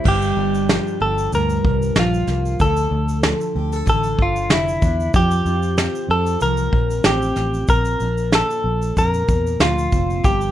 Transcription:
0.00 1.31 G2 medium
0.00 0.12 C3 medium
0.00 0.68 G3 medium
0.00 0.12 C4 medium
0.00 0.12 E4 soft
0.05 0.32 G1 loud
0.05 0.99 G4 medium
0.05 1.01 G4 medium
0.05 kick loud
0.05 crash medium
0.22 shaker medium
0.37 0.77 G1 loud
0.37 3.88 D4 medium
0.54 shaker soft
0.69 1.96 F3 medium
0.69 snare loud
0.69 shaker medium
0.87 shaker soft
1.00 1.27 G1 medium
1.00 2.60 G4 medium
1.00 1.31 A4 medium
1.18 shaker medium
1.32 1.59 D2 medium
1.32 2.67 G2 medium
1.32 1.99 A#4 medium
1.32 shaker medium
1.50 shaker medium
1.64 1.91 C2 medium
1.64 kick loud
1.82 shaker medium
1.96 2.22 A#1 medium
1.96 3.24 F3 medium
1.96 2.63 F4 medium
1.96 snare loud
1.96 shaker medium
2.14 shaker soft
2.27 2.54 C2 loud
2.27 2.67 A#3 medium
2.27 snare soft
2.27 shaker medium
2.45 shaker soft
2.60 2.86 D2 loud
2.60 3.84 D3 medium
2.60 3.55 A4 medium
2.60 3.88 A4 medium
2.60 kick loud
2.60 shaker medium
2.76 shaker medium
2.91 3.32 D2 loud
3.08 shaker soft
3.23 5.13 F3 medium
3.23 snare loud
3.23 shaker medium
3.41 shaker soft
3.55 3.82 D2 medium
3.55 3.73 G4 medium
3.72 5.15 A4 medium
3.72 shaker medium
3.86 4.13 A1 medium
3.86 5.21 D3 medium
3.86 4.21 A4 medium
3.86 kick medium
3.86 shaker medium
4.04 shaker soft
4.19 4.50 G1 medium
4.19 4.52 F4 medium
4.19 kick medium
4.36 shaker medium
4.50 4.76 F1 medium
4.50 5.12 E4 medium
4.50 snare loud
4.50 shaker medium
4.68 shaker soft
4.82 5.09 E2 loud
4.82 5.22 D4 medium
4.82 kick loud
4.82 shaker medium
5.00 shaker soft
5.14 5.40 F2 medium
5.14 6.42 F3 medium
5.14 6.09 G4 medium
5.14 6.11 G4 medium
5.14 kick loud
5.14 shaker medium
5.31 shaker medium
5.45 5.86 F2 loud
5.45 8.02 F4 medium
5.45 shaker soft
5.63 shaker soft
5.78 7.05 C4 medium
5.78 snare loud
5.78 shaker medium
5.95 shaker soft
6.09 6.35 F2 loud
6.09 7.70 G4 medium
6.09 6.42 A4 medium
6.26 shaker medium
6.40 6.68 C2 loud
6.40 9.61 F3 medium
6.40 7.06 A#4 medium
6.40 shaker medium
6.57 shaker medium
6.73 6.99 A#1 medium
6.73 kick medium
6.90 shaker medium
7.04 7.31 A1 medium
7.04 7.37 C4 medium
7.04 7.69 G4 medium
7.04 snare loud
7.04 shaker medium
7.22 shaker soft
7.36 7.63 A1 loud
7.36 8.05 C4 medium
7.36 snare soft
7.36 shaker medium
7.54 shaker soft
7.68 7.95 A#1 loud
7.68 8.96 A#2 medium
7.68 8.35 A#4 loud
7.68 kick loud
7.68 shaker medium
7.85 shaker medium
8.00 8.41 A#1 loud
8.00 10.51 D4 medium
8.00 shaker soft
8.18 shaker soft
8.32 8.98 A4 medium
8.32 snare loud
8.32 shaker medium
8.50 shaker soft
8.64 8.91 A#1 loud
8.82 shaker medium
8.97 9.23 F2 medium
8.97 10.24 A#2 medium
8.97 9.63 A#4 medium
8.97 kick medium
8.97 shaker medium
9.14 shaker medium
9.28 9.55 E2 medium
9.28 kick loud
9.28 shaker medium
9.47 shaker soft
9.60 9.86 D2 medium
9.60 10.51 F3 medium
9.60 10.27 F4 loud
9.60 snare loud
9.60 shaker medium
9.78 shaker soft
9.92 10.19 F1 medium
9.92 10.32 C4 medium
9.92 kick medium
9.92 shaker medium
10.10 shaker soft
10.24 10.51 G1 loud
10.24 10.51 G2 medium
10.24 10.51 G4 medium
10.24 kick loud
10.24 shaker medium
10.41 shaker medium

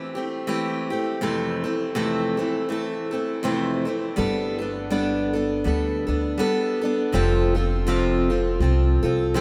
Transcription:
0.00 0.17 E3 soft
0.00 0.17 A3 soft
0.00 0.15 C4 medium
0.00 0.14 G4 medium
0.15 0.46 A3 soft
0.15 0.47 C4 soft
0.15 0.48 G4 soft
0.47 0.91 E3 medium
0.47 0.91 A3 medium
0.47 0.91 C4 medium
0.47 0.89 G4 medium
0.90 1.21 A3 soft
0.90 1.22 C4 soft
0.90 1.22 G4 medium
1.21 1.65 F2 medium
1.21 1.65 C3 medium
1.21 1.65 E3 medium
1.21 1.64 A3 medium
1.21 1.64 C4 medium
1.21 1.62 A4 medium
1.64 1.95 E3 soft
1.64 1.95 A3 soft
1.64 1.95 C4 soft
1.64 1.96 A4 soft
1.95 2.38 F2 medium
1.95 2.38 C3 medium
1.95 2.39 E3 medium
1.95 2.38 A3 medium
1.95 2.37 C4 medium
1.95 2.36 A4 medium
2.37 2.67 E3 soft
2.37 2.69 A3 soft
2.37 2.69 C4 soft
2.37 2.70 A4 soft
2.69 3.12 E3 soft
2.69 3.12 A3 soft
2.69 3.11 C4 soft
2.69 3.10 A4 medium
3.11 3.43 E3 soft
3.11 3.43 A3 soft
3.11 3.44 C4 soft
3.11 3.43 A4 medium
3.43 3.86 F2 medium
3.43 3.87 C3 medium
3.43 3.87 E3 medium
3.43 3.86 A3 medium
3.43 3.85 C4 medium
3.43 3.84 A4 medium
3.85 4.16 E3 soft
3.85 4.16 A3 soft
3.85 4.17 C4 soft
3.85 4.17 A4 soft
4.16 5.62 G1 medium
4.16 4.60 G3 medium
4.16 4.60 B3 medium
4.16 4.59 D4 medium
4.16 4.57 A4 medium
4.59 4.90 B3 soft
4.59 4.90 D4 soft
4.59 4.91 A4 soft
4.90 5.34 G3 medium
4.90 5.34 B3 medium
4.90 5.34 D4 medium
4.90 5.32 A4 medium
5.33 5.64 B3 soft
5.33 5.65 D4 soft
5.33 5.65 A4 soft
5.64 6.06 D2 medium
5.64 6.07 G3 soft
5.64 6.08 B3 medium
5.64 6.07 D4 soft
5.64 6.06 A4 medium
6.07 6.38 D2 medium
6.07 6.38 B3 soft
6.07 6.38 D4 soft
6.07 6.39 A4 soft
6.38 6.81 G3 medium
6.38 6.82 B3 medium
6.38 6.82 D4 medium
6.38 6.80 A4 medium
6.81 7.14 B3 soft
6.81 7.14 D4 soft
6.81 7.13 A4 medium
7.12 8.57 F1 medium
7.12 7.55 F2 medium
7.12 7.56 C3 medium
7.12 7.56 F3 medium
7.12 7.56 C4 medium
7.12 7.55 F4 medium
7.12 7.54 A4 medium
7.55 7.86 F3 soft
7.55 7.87 C4 soft
7.55 7.87 F4 soft
7.55 7.86 A4 soft
7.87 8.29 F2 medium
7.87 8.29 C3 medium
7.87 8.30 F3 medium
7.87 8.30 C4 medium
7.87 8.29 F4 medium
7.87 8.29 A4 medium
8.30 8.59 F3 soft
8.30 8.61 C4 soft
8.30 8.61 F4 soft
8.30 8.61 A4 soft
8.60 9.01 C2 medium
8.60 9.03 F3 soft
8.60 9.04 C4 soft
8.60 9.03 F4 medium
8.60 9.01 A4 medium
9.03 9.33 C2 medium
9.03 9.34 F3 soft
9.03 9.35 C4 soft
9.03 9.35 F4 soft
9.03 9.34 A4 medium
9.34 9.41 F2 medium
9.34 9.41 C3 medium
9.34 9.41 F3 medium
9.34 9.41 C4 medium
9.34 9.41 F4 medium
9.34 9.41 A4 medium

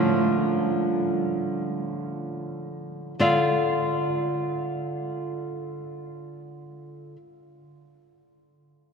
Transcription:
0.00 3.14 D3 soft
0.00 3.14 F3 soft
0.00 1.39 A3 soft
0.00 1.39 F4 soft
3.19 7.16 D3 soft
3.19 7.16 F4 soft
3.19 7.16 A4 soft
3.19 7.17 D5 soft
3.19 7.17 F5 soft

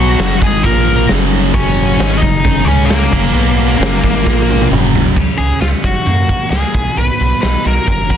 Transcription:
0.00 0.16 B1 loud
0.00 0.19 B2 loud
0.00 0.19 F#3 loud
0.00 0.20 B3 loud
0.00 0.38 F#4 medium
0.00 0.46 F#5 loud
0.19 0.40 F#1 loud
0.19 0.41 F#2 medium
0.19 0.42 C#3 loud
0.19 0.42 F#3 loud
0.19 snare loud
0.19 open hi-hat medium
0.41 0.63 G#1 loud
0.41 0.64 G#2 loud
0.41 0.64 D#3 loud
0.41 0.65 G#3 loud
0.41 0.64 G#4 medium
0.41 kick medium
0.46 0.66 G#5 loud
0.63 1.07 A#1 loud
0.63 1.09 A#2 medium
0.63 1.10 F3 loud
0.63 1.10 A#3 loud
0.63 1.06 A#4 medium
0.63 1.07 A#5 medium
0.63 kick loud
0.63 open hi-hat medium
1.08 1.52 F#1 loud
1.08 1.53 F#2 medium
1.08 1.54 C#3 medium
1.08 1.55 F#3 loud
1.08 snare loud
1.08 open hi-hat medium
1.53 1.97 F#1 medium
1.53 1.99 F#2 loud
1.53 1.99 C#3 medium
1.53 2.00 F#3 loud
1.53 2.19 C#4 medium
1.53 2.24 C#5 loud
1.53 kick loud
1.53 open hi-hat medium
1.99 2.21 G#1 medium
1.99 2.21 G#2 loud
1.99 2.22 D#3 loud
1.99 2.22 G#3 loud
1.99 snare loud
1.99 open hi-hat medium
2.17 2.64 D#4 medium
2.17 2.66 D#5 loud
2.22 2.44 F#1 medium
2.22 2.40 F#2 medium
2.22 2.41 C#3 medium
2.22 kick medium
2.44 2.66 F#1 loud
2.44 2.66 F#2 loud
2.44 2.66 C#3 loud
2.44 2.67 F#3 loud
2.44 kick loud
2.44 open hi-hat medium
2.65 3.09 C#2 medium
2.65 3.12 C#3 medium
2.65 3.12 G#3 loud
2.65 2.89 C#4 medium
2.65 3.12 C#4 loud
2.65 2.85 C#5 medium
2.86 4.64 A#4 medium
2.86 open hi-hat medium
2.90 4.67 A#3 medium
2.90 snare loud
3.12 3.33 F#1 loud
3.12 3.34 F#2 medium
3.12 3.34 C#3 medium
3.12 3.34 F#3 medium
3.12 kick loud
3.12 crash loud
3.34 3.76 B1 loud
3.34 3.79 B2 medium
3.34 3.79 F#3 medium
3.34 3.80 B3 loud
3.80 4.01 F#1 loud
3.80 4.02 F#2 medium
3.80 4.02 C#3 loud
3.80 4.02 F#3 loud
3.80 snare loud
3.80 open hi-hat medium
4.03 4.24 G#1 medium
4.03 4.25 G#2 loud
4.03 4.25 D#3 medium
4.03 4.25 G#3 loud
4.03 kick medium
4.22 4.70 A#2 medium
4.22 4.70 F3 medium
4.22 4.68 A#3 loud
4.22 kick loud
4.27 4.68 A#1 loud
4.27 4.71 A#3 medium
4.27 snare medium
4.51 high tom medium
4.61 high tom medium
4.71 5.13 F#1 loud
4.71 5.15 F#2 medium
4.71 5.16 C#3 medium
4.71 5.16 F#3 medium
4.71 mid tom medium
4.95 floor tom loud
5.06 floor tom medium
5.16 5.30 C#2 medium
5.16 5.84 C#3 medium
5.16 kick loud
5.16 crash medium
5.38 5.52 C#2 medium
5.38 5.61 G#4 medium
5.38 closed hi-hat medium
5.61 5.75 C#2 medium
5.61 5.85 B3 medium
5.61 5.67 F4 medium
5.61 snare medium
5.61 closed hi-hat medium
5.84 5.98 F#1 medium
5.84 6.75 F#2 medium
5.84 6.50 F#4 medium
5.84 kick medium
5.84 closed hi-hat medium
6.06 6.34 F#2 medium
6.06 6.52 A#3 medium
6.06 closed hi-hat medium
6.29 6.75 F#4 medium
6.29 kick medium
6.29 closed hi-hat medium
6.51 6.65 C#2 medium
6.51 6.75 A#3 medium
6.51 6.98 G#4 medium
6.51 snare medium
6.51 closed hi-hat medium
6.74 6.88 B1 medium
6.74 6.97 B2 medium
6.74 kick loud
6.74 closed hi-hat medium
6.96 7.11 B1 medium
6.96 7.88 B2 medium
6.96 7.41 B4 medium
6.96 closed hi-hat medium
7.19 7.34 B1 medium
7.19 closed hi-hat medium
7.42 7.57 B1 medium
7.42 7.87 D#4 medium
7.42 7.65 B4 medium
7.42 snare medium
7.42 closed hi-hat medium
7.65 7.79 B1 medium
7.65 7.87 F#3 medium
7.65 8.17 A#4 medium
7.65 closed hi-hat medium
7.87 8.15 F#1 medium
7.87 8.17 F#2 medium
7.87 kick medium
7.87 closed hi-hat medium
8.09 8.17 F#4 medium
8.09 kick medium
8.09 closed hi-hat medium

